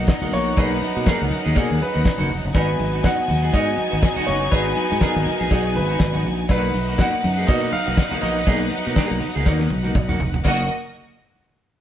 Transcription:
Already playing: F#3 B3 D#4 D#5 F#5
0.07 muted clean electric guitar stroke, kick, snare, closed hi-hat, cowbell
0.22 A#3 D#4 F#4, high conga, low conga
0.32 A#1 A#3 D#4 F#4 C#5, open hi-hat, muted conga, low conga
0.46 muted clean electric guitar stroke
0.56 B1 A#3 C#4 D#4 G#4 B4, kick, closed hi-hat, cowbell, muted conga
0.70 muted clean electric guitar stroke
0.81 muted clean electric guitar stroke, open hi-hat, muted conga, high conga
0.95 B2 A#3 D#4 F#4
1.06 A#3 D#4 G#4 A#4, kick, snare, closed hi-hat, cowbell, high conga
1.20 C#2, muted clean electric guitar stroke
1.31 muted clean electric guitar stroke, open hi-hat, muted conga, high conga, low conga
1.44 D#2 A#3 D#4 G#4
1.55 B2 A#3 D#4 F#4 G#4, kick, closed hi-hat, cowbell, muted conga
1.69 D#2, muted clean electric guitar stroke
1.79 B4, muted clean electric guitar stroke, open hi-hat, high conga
1.93 D#2 A#3 D#4 F#4
2.04 muted clean electric guitar stroke, kick, snare, closed hi-hat, cowbell
2.18 F#1 A#3 D#4 F#4, high conga, low conga
2.29 F1, muted clean electric guitar stroke, open hi-hat, muted conga, high conga, low conga
2.43 F#1, muted clean electric guitar stroke
2.53 G#1 G#3 B3 D#4 F#4 B4 G#5, kick, closed hi-hat, cowbell, muted conga
2.68 muted clean electric guitar stroke
2.79 G#1, muted clean electric guitar stroke, open hi-hat, muted conga, high conga
2.93 B3 D#4 F#4
3.03 B3 D#4 F#4 F#5, kick, snare, closed hi-hat, cowbell, high conga
3.17 muted clean electric guitar stroke
3.28 D#2, muted clean electric guitar stroke, open hi-hat, muted conga, high conga, low conga
3.42 B3 D#4 G#4
3.53 G#2 B3 D#4 F#4 D#5, kick, closed hi-hat, cowbell
3.67 muted clean electric guitar stroke
3.77 muted clean electric guitar stroke, open hi-hat, muted conga, high conga
3.91 G#1 B3 D#4 F#4
4.01 muted clean electric guitar stroke, kick, snare, closed hi-hat, cowbell, muted conga
4.16 B3 D#4 F#4, high conga, low conga
4.27 F#1 B3 D#4 F#4 C#5, open hi-hat, low conga
4.41 muted clean electric guitar stroke
4.51 G#1 B3 D#4 G#4 B4, kick, closed hi-hat, cowbell
4.66 muted clean electric guitar stroke
4.76 muted clean electric guitar stroke, open hi-hat, high conga
4.90 G#2 B3 D#4 F#4
5.00 B3 D#4 G#4 A#4, kick, snare, closed hi-hat, cowbell, muted conga, high conga
5.15 G#1, muted clean electric guitar stroke
5.26 muted clean electric guitar stroke, open hi-hat, high conga, low conga
5.39 A#1 B3 D#4 G#4
5.50 B1 B3 D#4 F#4 G#4, kick, closed hi-hat, cowbell
5.64 muted clean electric guitar stroke
5.75 G#1 B4, muted clean electric guitar stroke, open hi-hat, high conga
5.89 B3 D#4 F#4
5.98 G#1, muted clean electric guitar stroke, kick, snare, closed hi-hat, cowbell, muted conga
6.14 B3 D#4 F#4, high conga, low conga
6.24 A#1, muted clean electric guitar stroke, open hi-hat, low conga
6.38 muted clean electric guitar stroke
6.48 B1 F#3 A#3 B3 D#4 F#4 B4 F#5, kick, closed hi-hat, cowbell, muted conga
6.63 muted clean electric guitar stroke
6.74 B1, muted clean electric guitar stroke, open hi-hat, muted conga, high conga
6.88 A#3 D#4 F#4
6.98 A#3 D#4 F#4 F#5, kick, snare, closed hi-hat, cowbell, muted conga, high conga
7.13 muted clean electric guitar stroke
7.23 F#2, muted clean electric guitar stroke, open hi-hat, muted conga, high conga, low conga
7.37 A#3 D#4 G#4
7.47 B2 A#3 D#4 F#4 D#5, kick, closed hi-hat, cowbell, muted conga
7.61 muted clean electric guitar stroke
7.72 F5, muted clean electric guitar stroke, open hi-hat, muted conga, high conga
7.86 B1 A#3 D#4 F#4
7.96 muted clean electric guitar stroke, kick, snare, closed hi-hat, cowbell
8.11 A#3 D#4 F#4, high conga, low conga
8.21 A#1 A#3 D#4 F#4 D#5, open hi-hat, muted conga, low conga
8.36 muted clean electric guitar stroke
8.46 B1 A#3 D#4 G#4, kick, closed hi-hat, cowbell
8.60 muted clean electric guitar stroke
8.71 muted clean electric guitar stroke, open hi-hat, muted conga, high conga
8.85 B2 A#3 D#4 F#4
8.95 A#3 D#4 G#4, kick, snare, closed hi-hat, cowbell, muted conga, high conga
9.10 B1, muted clean electric guitar stroke
9.21 muted clean electric guitar stroke, open hi-hat, high conga, low conga
9.35 C#2 A#3 D#4 G#4
9.45 D#2 A#3 D#4 F#4, kick, snare, cowbell, muted conga
9.59 muted clean electric guitar stroke, snare
9.70 B1, muted clean electric guitar stroke, high tom, muted conga, high conga
9.83 A#3 D#4 F#4, high tom
9.95 B1, muted clean electric guitar stroke, kick, mid tom, cowbell, muted conga
10.09 A#3 D#4 F#4, mid tom, high conga, low conga
10.19 F1, muted clean electric guitar stroke, floor tom, muted conga, low conga
10.33 muted clean electric guitar stroke, floor tom
10.44 F#1 F#3 A#3 D#4 F#4 A#4 D#5 F#5, kick, crash, cowbell, high conga

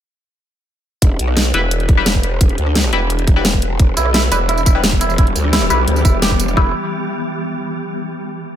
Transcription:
1.02 E1, kick, closed hi-hat
1.19 B1, closed hi-hat
1.28 cross-stick
1.37 snare, closed hi-hat
1.54 E1 G3 E4 B4, closed hi-hat
1.71 closed hi-hat
1.80 closed hi-hat
1.89 kick, closed hi-hat
1.97 G3 E4 B4
2.06 snare, closed hi-hat
2.15 kick
2.23 closed hi-hat
2.41 E1, kick, closed hi-hat
2.49 closed hi-hat
2.58 D2, closed hi-hat
2.67 cross-stick
2.75 snare, closed hi-hat
2.84 cross-stick
2.93 E1 G3 E4 B4, closed hi-hat
3.10 closed hi-hat
3.19 closed hi-hat
3.27 kick, closed hi-hat
3.36 G3 E4 B4
3.45 snare, closed hi-hat
3.54 kick
3.62 closed hi-hat
3.79 E1 E3 G3 B3 G4, kick, closed hi-hat
3.97 B1 E4, closed hi-hat, tambourine
4.06 cross-stick
4.14 E4, snare, closed hi-hat
4.32 E1 G3 E4 B4, closed hi-hat, tambourine
4.49 E4, closed hi-hat
4.58 closed hi-hat, tambourine
4.66 E4, kick, closed hi-hat, tambourine
4.75 G3 E4 B4
4.84 snare, closed hi-hat
4.92 kick
5.01 E4, closed hi-hat, tambourine
5.10 tambourine
5.18 E1 E4, kick, closed hi-hat
5.27 closed hi-hat
5.36 D2, closed hi-hat, tambourine
5.44 cross-stick
5.53 E4, snare, closed hi-hat
5.62 cross-stick
5.70 B1 G3 E4 B4, closed hi-hat, tambourine
5.88 D2, closed hi-hat
5.96 closed hi-hat, tambourine
6.05 E1 E4, kick, closed hi-hat, tambourine
6.22 G4, snare, closed hi-hat
6.31 kick
6.40 closed hi-hat, tambourine
6.48 tambourine
6.57 E1 G3 E4 B4, kick

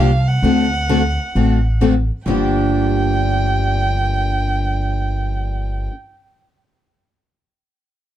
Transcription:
Already playing: C2 F5
0.00 G4
0.28 F#5
0.42 D2 D3 A3 C4 F#4 A4
0.89 D3 A3 C4 F#4 A4
1.35 A1 D3 A3 C4 F#4 A4
1.81 D3 A3 C4 F#4 A4
2.26 G1 G2 D3 F3 A#3 D4 G4 G5

